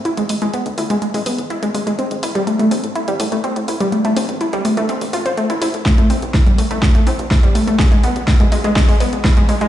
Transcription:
<<
  \new Staff \with { instrumentName = "Synth arpeggio sound" } { \time 4/4 \key a \minor \tempo 4 = 124 e'16 gis16 gis16 gis16 b16 r16 e'16 gis16 gis16 gis16 b16 r16 e'16 gis16 gis16 gis16 | c'16 r16 e'16 g16 a16 a16 c'16 r16 e'16 g16 a16 a16 c'16 r16 e'16 g16 | a16 a16 c'16 r16 e'16 g16 a16 a16 c'16 r16 f'16 c''16 a16 e'16 e'16 r16 | a16 a16 c'16 r16 e'16 g16 a16 a16 a16 a16 c'16 r16 e'16 g16 a16 a16 |
gis16 gis16 b16 r16 e'16 gis16 gis16 gis16 gis16 gis16 b16 r16 e'16 gis16 gis16 gis16 | }
  \new Staff \with { instrumentName = "Analog synth bass" } { \clef bass \time 4/4 \key a \minor r16 a,,16 a,,16 a,,16 r16 d,16 d,16 d,16 r16 a,,16 a,,16 a,,16 r16 a,,16 a,,16 a,,16 | r16 a,,16 a,,16 a,,16 r16 a,,16 a,,16 a,,16 r16 a,,16 a,16 a,,16 r16 a,16 a,,16 a,,16 | r16 a,,16 a,,16 a,,16 r16 d,16 d,16 d,16 r16 a,,16 a,,16 a,,16 r16 a,,16 a,,16 a,,16 | r16 a,,16 a,,16 a,,16 r16 a,,16 a,,16 a,,16 r16 a,,16 a,16 a,,16 r16 a,16 a,,16 a,,16 |
r16 a,,16 a,,16 a,,16 r16 d,16 d,16 d,16 r16 a,,16 a,,16 a,,16 r16 a,,16 a,,16 a,,16 | }
  \new DrumStaff \with { instrumentName = "Drums" } \drummode { \time 4/4 hh16 hh16 hho16 hh16 hh16 hh16 hho16 hh16 hh16 hho16 hho16 hh16 hh16 hh16 hho16 hh16 | hh16 hh16 hho16 hh16 hh16 hh16 hho16 hh16 hh16 hh16 hho16 hh16 hh16 hh16 hho16 hh16 | hh16 hh16 hho16 hh16 hh16 hh16 hho16 hh16 hh16 hho16 hho16 hh16 hh16 hh16 hho16 hh16 | <hh bd sn>16 hh16 hho16 hh16 <hh bd sn>16 hh16 hho16 hh16 <hh bd sn>16 hh16 hho16 hh16 <hh bd sn>16 hh16 hho16 hh16 |
<hh bd sn>16 hh16 hho16 hh16 <hh bd sn>16 hh16 hho16 hh16 <hh bd sn>16 hho16 hho16 hh16 <hh bd sn>16 hh16 hho16 hh16 | }
>>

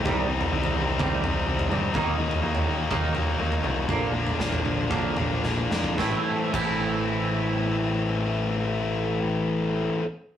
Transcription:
<<
  \new Staff \with { instrumentName = "Distorted electric guitar" } { \clef bass \time 4/4 \key a \phrygian \tempo 4 = 115 <c g c' ees'>8 <c g c' ees'>8 <c g c' ees'>8 <c g c' ees'>8 <c g c' ees'>8 <c g c' ees'>8 <c g c' ees'>8 <c g c' ees'>8 | <dis fis ais dis'>8 <dis fis ais dis'>8 <dis fis ais dis'>8 <dis fis ais dis'>8 <dis fis ais dis'>8 <dis fis ais dis'>8 <dis fis ais dis'>8 <dis fis ais dis'>8 | <bes, d f bes d'>8 <bes, d f bes d'>8 <bes, d f bes d'>8 <bes, d f bes d'>8 <bes, d f bes d'>8 <bes, d f bes d'>8 <bes, d f bes d'>8 <bes, d f bes d'>8 | <a, e a c' e'>8 r8 <a, e a c' e'>2.~ |
<a, e a c' e'>1 | }
  \new Staff \with { instrumentName = "Clean electric guitar" } { \clef bass \time 4/4 \key a \phrygian <c ees g>8 <c ees>8 <c ees>8 <c ees>8 <c ees g>8 <c ees>8 <c ees>8 <c ees>8 | <dis ais dis'>8 <dis ais>8 <dis ais>8 <dis ais>8 <dis ais dis'>8 <dis ais>8 <dis ais>8 <dis ais>8 | <bes, d bes>8 <bes, d>8 <bes, d>8 <bes, d>8 <bes, d bes>8 <bes, d>8 <bes, d>8 <bes, d>8 | <a, e a c' e'>8 r8 <a, e a c' e'>2.~ |
<a, e a c' e'>1 | }
  \new Staff \with { instrumentName = "Picked electric bass" } { \clef bass \time 4/4 \key a \phrygian c,4 c,8 c,8 c,8 c,8 c,8 g,8 | dis,8 dis,8 dis,4 dis,8 dis,8 dis,8 c,8 | bes,,4 bes,,8 bes,,8 bes,,8 bes,,8 bes,,8 f,8 | a,,8 r8 a,,2.~ |
a,,1 | }
  \new DrumStaff \with { instrumentName = "Drums" } \drummode { \time 4/4 <bd tomfh>8. tomfh16 r16 tomfh8. <bd tomfh toml>8 tomfh8 r16 tomfh16 toml8 | <bd tomfh>8. tomfh16 r16 tomfh8. <bd tomfh toml>8 tomfh8 r16 tomfh16 toml8 | <bd tomfh>8. tomfh16 sn16 tomfh16 toml8 <bd tomfh toml>8 tomfh8 sn16 toml16 sn16 bd16 | <bd sn>4 <cymc bd>4 r4 r4 |
r4 r4 r4 r4 | }
>>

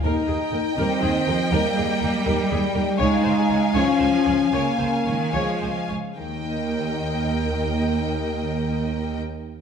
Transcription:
<<
  \new Staff \with { instrumentName = "Violin section" } { \time 6/8 \key ees \mixolydian \tempo 4. = 76 g''2.~ | g''2. | aes''2.~ | aes''2~ aes''8 r8 |
g''2.~ | g''2. | }
  \new Staff \with { instrumentName = "Violin section" } { \time 6/8 \key ees \mixolydian ees''2.~ | ees''2. | f''2.~ | f''2~ f''8 r8 |
ees''2.~ | ees''2. | }
  \new Staff \with { instrumentName = "Viola section" } { \time 6/8 \key ees \mixolydian bes'8 aes'8 bes'8 bes'8 aes'8 bes'8 | bes'8 aes'8 bes'8 bes'8 aes'8 bes'8 | des''8 c''8 des''8 des''8 c''8 des''8 | des''8 c''8 des''8 des''8 c''8 des''8 |
bes'2.~ | bes'2. | }
  \new Staff \with { instrumentName = "French horn section" } { \time 6/8 \key ees \mixolydian ees'4. c'4. | bes4. g4. | ees'4. des'4. | bes4. aes4. |
ees2.~ | ees2. | }
  \new Staff \with { instrumentName = "Cello section" } { \clef bass \time 6/8 \key ees \mixolydian r4. g8 ees8 f8 | g2. | aes4. f4. | des8 des8 ees8 f8. r8. |
ees,2.~ | ees,2. | }
  \new Staff \with { instrumentName = "Double bass section" } { \clef bass \time 6/8 \key ees \mixolydian ees,8 ees,8 ees,8 ees,8 ees,8 ees,8 | ees,8 ees,8 ees,8 ees,8 ees,8 ees,8 | des,8 des,8 des,8 des,8 des,8 des,8 | des,8 des,8 des,8 des,8 des,8 des,8 |
ees,2.~ | ees,2. | }
>>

